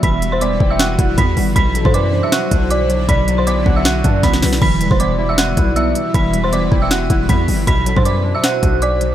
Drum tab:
CC |----------------|----------------|----------------|x---------------|
HH |x-x-x---x-x-x-o-|x-x-x---x-x-x-x-|x-x-x---x-x-x-o-|--x-x---x-x-x-x-|
SD |--------o-------|--------o-------|--------o---oooo|--------o-------|
BD |o-----o---o-o---|o--o------o-----|o-----o---o-o---|o--o------o-----|

CC |----------------|----------------|
HH |x-x-x---x-x-x-o-|x-x-x---x-x-x-x-|
SD |--------o-------|--------o-------|
BD |o-----o---o-o---|o--o------o-----|